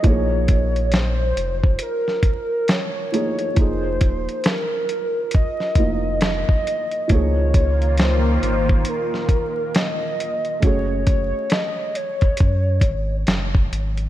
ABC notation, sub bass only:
X:1
M:4/4
L:1/16
Q:"Swing 16ths" 1/4=68
K:Bbm
V:1 name="Sub bass" clef=bass
B,,,6 F,,,2 z8 | F,,,2 E,,, z6 z F,,,3 z3 | D,,6 A,,,2 z8 | G,,,2 G,,, z4 z G,,2 A,,,2 G,,,2 A,,,2 |]